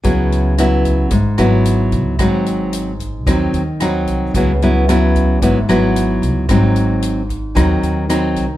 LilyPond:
<<
  \new Staff \with { instrumentName = "Nylon-string guitar" } { \time 4/4 \key cis \minor \tempo 4 = 112 << { <fis b e'>4 <fis b e'>4 r8 <fis b e'>4. | <fis bis dis'>4. r8 <fis bis dis'>8 r8 <fis bis dis'>4 | <fis b e'>8 <fis b e'>8 <fis b e'>4 <fis b e'>8 <fis b e'>4. | <fis bis dis'>4. r8 <fis bis dis'>4 <fis bis dis'>8 r8 | } \\ { cis2 gis,2 | gis,2 dis2 | cis2 gis,2 | gis,2 dis2 | } >> }
  \new Staff \with { instrumentName = "Upright bass" } { \clef bass \time 4/4 \key cis \minor cis,2 gis,,8 gis,,4 cis,8 | gis,,2 dis,8 dis,4 bis,,8 | cis,2 gis,,8 gis,,4 cis,8 | gis,,2 dis,8 dis,4 bis,,8 | }
  \new DrumStaff \with { instrumentName = "Drums" } \drummode { \time 4/4 <hh bd>8 hh8 <hh ss>8 <hh bd>8 <hh bd>8 <hh ss>8 hh8 <hh bd>8 | <hh bd ss>8 hh8 hh8 <hh bd>8 <hh bd ss>8 hh8 <hh ss>8 <hh bd>8 | <hh bd>8 hh8 <hh ss>8 <hh bd>8 <hh bd>8 <hh ss>8 hh8 <hh bd>8 | <hh bd ss>8 hh8 hh8 <hh bd>8 <hh bd ss>8 hh8 <hh ss>8 <hh bd>8 | }
>>